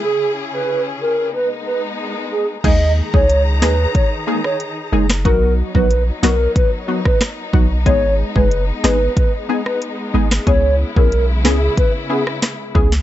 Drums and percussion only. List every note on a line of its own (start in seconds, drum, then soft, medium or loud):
2.64 kick loud
2.64 closed hi-hat medium
2.64 crash loud
3.14 kick medium
3.30 closed hi-hat medium
3.62 cross-stick medium
3.62 snare loud
3.95 kick medium
3.95 closed hi-hat medium
4.44 cross-stick medium
4.60 closed hi-hat medium
5.10 cross-stick medium
5.10 snare loud
5.25 kick loud
5.25 closed hi-hat medium
5.75 kick medium
5.91 closed hi-hat medium
6.23 cross-stick medium
6.23 snare loud
6.56 kick loud
6.56 closed hi-hat medium
7.05 kick medium
7.05 cross-stick medium
7.21 cross-stick loud
7.21 snare loud
7.21 closed hi-hat medium
7.53 kick loud
7.86 kick loud
7.86 closed hi-hat medium
8.36 kick medium
8.51 closed hi-hat medium
8.84 cross-stick medium
8.84 snare loud
9.17 kick loud
9.17 closed hi-hat medium
9.66 cross-stick medium
9.82 closed hi-hat medium
10.31 cross-stick medium
10.31 snare loud
10.47 kick loud
10.47 closed hi-hat medium
10.96 kick medium
11.12 closed hi-hat medium
11.45 cross-stick medium
11.45 snare loud
11.77 kick medium
11.77 closed hi-hat medium
12.27 cross-stick medium
12.42 cross-stick medium
12.42 snare loud
12.42 closed hi-hat medium
12.75 kick loud
12.92 snare medium